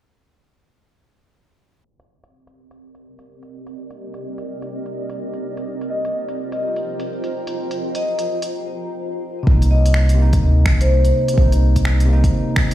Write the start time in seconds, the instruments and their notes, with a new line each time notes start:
1.85 ambient pad C4
1.96 ambient pad G4, closed hi-hat
2.05 ambient pad D5
2.24 ambient pad A#4, closed hi-hat
2.43 ambient pad D#5
2.47 closed hi-hat
2.71 closed hi-hat
2.95 closed hi-hat
3.19 closed hi-hat
3.43 closed hi-hat
3.67 closed hi-hat
3.91 closed hi-hat
4.14 closed hi-hat
4.38 closed hi-hat
4.62 closed hi-hat
4.86 closed hi-hat
5.10 closed hi-hat
5.34 closed hi-hat
5.57 closed hi-hat
5.66 ambient pad F4
5.71 ambient pad C5
5.81 closed hi-hat
5.86 vibraphone D#5, ambient pad G5
5.96 ambient pad A#5
6.05 closed hi-hat
6.29 closed hi-hat
6.52 vibraphone D#5, closed hi-hat
6.76 closed hi-hat
7.00 closed hi-hat
7.24 closed hi-hat
7.47 closed hi-hat
7.71 closed hi-hat
7.95 vibraphone D#5, closed hi-hat
8.19 closed hi-hat
8.42 closed hi-hat
9.43 sub bass C2, tine electric piano C3 A#3, kick
9.51 tine electric piano D#4
9.62 closed hi-hat
9.71 vibraphone D#5
9.86 closed hi-hat
9.94 finger snap
10.09 closed hi-hat
10.14 tine electric piano C3 A#3
10.22 tine electric piano D#4
10.33 kick, closed hi-hat
10.42 sub bass D2
10.66 sub bass C2, finger snap, kick
10.81 vibraphone C5, closed hi-hat
11.05 closed hi-hat
11.28 closed hi-hat
11.33 tine electric piano C3
11.38 sub bass C2, tine electric piano A#3 D#4, kick
11.52 closed hi-hat
11.76 kick, closed hi-hat
11.85 finger snap
12.00 closed hi-hat
12.05 tine electric piano C3
12.09 tine electric piano A#3 D#4
12.24 kick, closed hi-hat
12.56 finger snap, kick
12.71 closed hi-hat